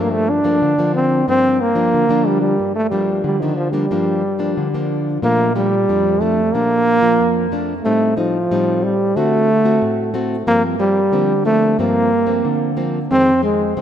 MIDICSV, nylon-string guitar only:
0, 0, Header, 1, 2, 480
1, 0, Start_track
1, 0, Key_signature, -2, "minor"
1, 0, Tempo, 657174
1, 1896, Time_signature, 4, 2, 24, 8
1, 3816, Key_signature, -2, "major"
1, 10090, End_track
2, 0, Start_track
2, 0, Title_t, "Nylon-string guitar"
2, 0, Program_c, 0, 24
2, 0, Note_on_c, 0, 43, 61
2, 0, Note_on_c, 0, 53, 59
2, 0, Note_on_c, 0, 58, 54
2, 0, Note_on_c, 0, 62, 57
2, 296, Note_off_c, 0, 53, 0
2, 299, Note_off_c, 0, 58, 0
2, 300, Note_off_c, 0, 62, 0
2, 322, Note_on_c, 0, 53, 67
2, 325, Note_on_c, 0, 58, 65
2, 331, Note_on_c, 0, 62, 62
2, 430, Note_off_c, 0, 43, 0
2, 452, Note_on_c, 0, 50, 64
2, 530, Note_off_c, 0, 53, 0
2, 532, Note_off_c, 0, 58, 0
2, 535, Note_off_c, 0, 62, 0
2, 574, Note_on_c, 0, 53, 63
2, 578, Note_on_c, 0, 58, 61
2, 581, Note_on_c, 0, 62, 65
2, 897, Note_off_c, 0, 53, 0
2, 898, Note_off_c, 0, 58, 0
2, 900, Note_off_c, 0, 62, 0
2, 910, Note_off_c, 0, 50, 0
2, 932, Note_on_c, 0, 43, 66
2, 934, Note_on_c, 0, 53, 55
2, 938, Note_on_c, 0, 58, 58
2, 942, Note_on_c, 0, 62, 64
2, 1159, Note_off_c, 0, 53, 0
2, 1162, Note_off_c, 0, 58, 0
2, 1163, Note_off_c, 0, 62, 0
2, 1280, Note_on_c, 0, 53, 61
2, 1285, Note_on_c, 0, 58, 52
2, 1285, Note_on_c, 0, 62, 61
2, 1390, Note_off_c, 0, 43, 0
2, 1417, Note_on_c, 0, 50, 73
2, 1490, Note_off_c, 0, 53, 0
2, 1491, Note_off_c, 0, 58, 0
2, 1492, Note_off_c, 0, 62, 0
2, 1528, Note_on_c, 0, 53, 63
2, 1535, Note_on_c, 0, 58, 55
2, 1538, Note_on_c, 0, 62, 67
2, 1853, Note_off_c, 0, 53, 0
2, 1857, Note_off_c, 0, 58, 0
2, 1858, Note_off_c, 0, 62, 0
2, 1872, Note_off_c, 0, 50, 0
2, 1895, Note_on_c, 0, 43, 63
2, 2129, Note_on_c, 0, 53, 48
2, 2134, Note_on_c, 0, 62, 57
2, 2135, Note_on_c, 0, 58, 54
2, 2352, Note_off_c, 0, 43, 0
2, 2367, Note_on_c, 0, 50, 75
2, 2455, Note_off_c, 0, 53, 0
2, 2456, Note_off_c, 0, 58, 0
2, 2457, Note_off_c, 0, 62, 0
2, 2500, Note_on_c, 0, 53, 60
2, 2503, Note_on_c, 0, 58, 60
2, 2507, Note_on_c, 0, 62, 67
2, 2700, Note_off_c, 0, 53, 0
2, 2701, Note_off_c, 0, 58, 0
2, 2703, Note_off_c, 0, 62, 0
2, 2724, Note_on_c, 0, 53, 55
2, 2727, Note_on_c, 0, 58, 57
2, 2731, Note_on_c, 0, 62, 64
2, 2812, Note_off_c, 0, 53, 0
2, 2812, Note_off_c, 0, 58, 0
2, 2815, Note_off_c, 0, 62, 0
2, 2828, Note_off_c, 0, 50, 0
2, 2856, Note_on_c, 0, 53, 58
2, 2857, Note_on_c, 0, 43, 72
2, 2860, Note_on_c, 0, 58, 54
2, 2863, Note_on_c, 0, 62, 59
2, 3080, Note_off_c, 0, 53, 0
2, 3083, Note_off_c, 0, 58, 0
2, 3085, Note_off_c, 0, 62, 0
2, 3205, Note_on_c, 0, 53, 57
2, 3208, Note_on_c, 0, 58, 57
2, 3212, Note_on_c, 0, 62, 61
2, 3313, Note_off_c, 0, 43, 0
2, 3340, Note_on_c, 0, 50, 71
2, 3412, Note_off_c, 0, 53, 0
2, 3413, Note_off_c, 0, 58, 0
2, 3415, Note_off_c, 0, 62, 0
2, 3465, Note_on_c, 0, 53, 56
2, 3465, Note_on_c, 0, 58, 68
2, 3468, Note_on_c, 0, 62, 54
2, 3794, Note_off_c, 0, 50, 0
2, 3801, Note_off_c, 0, 53, 0
2, 3801, Note_off_c, 0, 58, 0
2, 3802, Note_off_c, 0, 62, 0
2, 3816, Note_on_c, 0, 46, 73
2, 3822, Note_on_c, 0, 53, 61
2, 3822, Note_on_c, 0, 57, 57
2, 3826, Note_on_c, 0, 62, 69
2, 4019, Note_off_c, 0, 53, 0
2, 4021, Note_off_c, 0, 57, 0
2, 4022, Note_off_c, 0, 62, 0
2, 4055, Note_on_c, 0, 53, 52
2, 4059, Note_on_c, 0, 57, 60
2, 4063, Note_on_c, 0, 62, 66
2, 4197, Note_off_c, 0, 53, 0
2, 4199, Note_off_c, 0, 57, 0
2, 4200, Note_off_c, 0, 62, 0
2, 4272, Note_off_c, 0, 46, 0
2, 4302, Note_on_c, 0, 53, 57
2, 4304, Note_on_c, 0, 41, 71
2, 4306, Note_on_c, 0, 57, 51
2, 4310, Note_on_c, 0, 62, 61
2, 4500, Note_off_c, 0, 53, 0
2, 4502, Note_off_c, 0, 57, 0
2, 4504, Note_off_c, 0, 62, 0
2, 4533, Note_on_c, 0, 53, 52
2, 4539, Note_on_c, 0, 57, 45
2, 4542, Note_on_c, 0, 62, 56
2, 4675, Note_off_c, 0, 53, 0
2, 4679, Note_off_c, 0, 57, 0
2, 4679, Note_off_c, 0, 62, 0
2, 4756, Note_off_c, 0, 41, 0
2, 4777, Note_on_c, 0, 46, 64
2, 4780, Note_on_c, 0, 53, 53
2, 4785, Note_on_c, 0, 62, 64
2, 5098, Note_off_c, 0, 53, 0
2, 5101, Note_off_c, 0, 62, 0
2, 5125, Note_on_c, 0, 53, 58
2, 5135, Note_on_c, 0, 62, 66
2, 5232, Note_off_c, 0, 46, 0
2, 5254, Note_on_c, 0, 41, 71
2, 5452, Note_off_c, 0, 53, 0
2, 5456, Note_off_c, 0, 62, 0
2, 5490, Note_on_c, 0, 53, 54
2, 5493, Note_on_c, 0, 57, 58
2, 5499, Note_on_c, 0, 62, 60
2, 5647, Note_off_c, 0, 53, 0
2, 5649, Note_off_c, 0, 57, 0
2, 5650, Note_off_c, 0, 62, 0
2, 5711, Note_off_c, 0, 41, 0
2, 5732, Note_on_c, 0, 55, 55
2, 5734, Note_on_c, 0, 45, 67
2, 5738, Note_on_c, 0, 60, 61
2, 5740, Note_on_c, 0, 63, 64
2, 5935, Note_off_c, 0, 55, 0
2, 5937, Note_off_c, 0, 60, 0
2, 5937, Note_off_c, 0, 63, 0
2, 5965, Note_on_c, 0, 55, 59
2, 5971, Note_on_c, 0, 63, 63
2, 5972, Note_on_c, 0, 60, 56
2, 6112, Note_off_c, 0, 55, 0
2, 6113, Note_off_c, 0, 60, 0
2, 6114, Note_off_c, 0, 63, 0
2, 6191, Note_off_c, 0, 45, 0
2, 6216, Note_on_c, 0, 45, 75
2, 6219, Note_on_c, 0, 55, 64
2, 6222, Note_on_c, 0, 63, 65
2, 6224, Note_on_c, 0, 60, 57
2, 6525, Note_off_c, 0, 55, 0
2, 6526, Note_off_c, 0, 60, 0
2, 6527, Note_off_c, 0, 63, 0
2, 6672, Note_off_c, 0, 45, 0
2, 6692, Note_on_c, 0, 50, 73
2, 6695, Note_on_c, 0, 57, 57
2, 6698, Note_on_c, 0, 60, 58
2, 6700, Note_on_c, 0, 66, 63
2, 6919, Note_off_c, 0, 57, 0
2, 6921, Note_off_c, 0, 60, 0
2, 6922, Note_off_c, 0, 66, 0
2, 7044, Note_on_c, 0, 57, 56
2, 7049, Note_on_c, 0, 60, 54
2, 7052, Note_on_c, 0, 66, 67
2, 7149, Note_off_c, 0, 50, 0
2, 7172, Note_on_c, 0, 45, 74
2, 7371, Note_off_c, 0, 57, 0
2, 7372, Note_off_c, 0, 60, 0
2, 7372, Note_off_c, 0, 66, 0
2, 7405, Note_on_c, 0, 57, 61
2, 7408, Note_on_c, 0, 60, 66
2, 7413, Note_on_c, 0, 66, 69
2, 7564, Note_off_c, 0, 57, 0
2, 7566, Note_off_c, 0, 60, 0
2, 7567, Note_off_c, 0, 66, 0
2, 7629, Note_off_c, 0, 45, 0
2, 7647, Note_on_c, 0, 43, 71
2, 7648, Note_on_c, 0, 53, 53
2, 7651, Note_on_c, 0, 58, 62
2, 7653, Note_on_c, 0, 60, 63
2, 7852, Note_off_c, 0, 53, 0
2, 7853, Note_off_c, 0, 58, 0
2, 7855, Note_off_c, 0, 60, 0
2, 7882, Note_on_c, 0, 53, 49
2, 7885, Note_on_c, 0, 58, 54
2, 7889, Note_on_c, 0, 60, 63
2, 8029, Note_off_c, 0, 53, 0
2, 8031, Note_off_c, 0, 58, 0
2, 8031, Note_off_c, 0, 60, 0
2, 8107, Note_off_c, 0, 43, 0
2, 8123, Note_on_c, 0, 50, 69
2, 8127, Note_on_c, 0, 58, 55
2, 8129, Note_on_c, 0, 53, 59
2, 8132, Note_on_c, 0, 60, 61
2, 8271, Note_off_c, 0, 53, 0
2, 8272, Note_off_c, 0, 58, 0
2, 8273, Note_off_c, 0, 60, 0
2, 8363, Note_on_c, 0, 53, 42
2, 8367, Note_on_c, 0, 58, 45
2, 8370, Note_on_c, 0, 60, 60
2, 8569, Note_off_c, 0, 53, 0
2, 8572, Note_off_c, 0, 58, 0
2, 8572, Note_off_c, 0, 60, 0
2, 8585, Note_off_c, 0, 50, 0
2, 8609, Note_on_c, 0, 43, 72
2, 8612, Note_on_c, 0, 53, 59
2, 8615, Note_on_c, 0, 58, 52
2, 8619, Note_on_c, 0, 60, 60
2, 8838, Note_off_c, 0, 53, 0
2, 8838, Note_off_c, 0, 58, 0
2, 8840, Note_off_c, 0, 60, 0
2, 8956, Note_on_c, 0, 53, 58
2, 8959, Note_on_c, 0, 58, 61
2, 8961, Note_on_c, 0, 60, 69
2, 9067, Note_off_c, 0, 43, 0
2, 9091, Note_on_c, 0, 50, 75
2, 9286, Note_off_c, 0, 53, 0
2, 9287, Note_off_c, 0, 58, 0
2, 9288, Note_off_c, 0, 60, 0
2, 9325, Note_on_c, 0, 53, 59
2, 9329, Note_on_c, 0, 58, 60
2, 9332, Note_on_c, 0, 60, 68
2, 9483, Note_off_c, 0, 53, 0
2, 9485, Note_off_c, 0, 58, 0
2, 9486, Note_off_c, 0, 60, 0
2, 9547, Note_off_c, 0, 50, 0
2, 9576, Note_on_c, 0, 41, 69
2, 9578, Note_on_c, 0, 51, 60
2, 9581, Note_on_c, 0, 56, 57
2, 9583, Note_on_c, 0, 60, 72
2, 9715, Note_off_c, 0, 51, 0
2, 9718, Note_off_c, 0, 56, 0
2, 9718, Note_off_c, 0, 60, 0
2, 9804, Note_on_c, 0, 51, 55
2, 9807, Note_on_c, 0, 56, 52
2, 9811, Note_on_c, 0, 60, 59
2, 9949, Note_off_c, 0, 51, 0
2, 9950, Note_off_c, 0, 56, 0
2, 9952, Note_off_c, 0, 60, 0
2, 10030, Note_off_c, 0, 41, 0
2, 10056, Note_on_c, 0, 48, 75
2, 10056, Note_on_c, 0, 51, 60
2, 10058, Note_on_c, 0, 56, 55
2, 10058, Note_on_c, 0, 60, 67
2, 10090, Note_off_c, 0, 48, 0
2, 10090, Note_off_c, 0, 51, 0
2, 10090, Note_off_c, 0, 56, 0
2, 10090, Note_off_c, 0, 60, 0
2, 10090, End_track
0, 0, End_of_file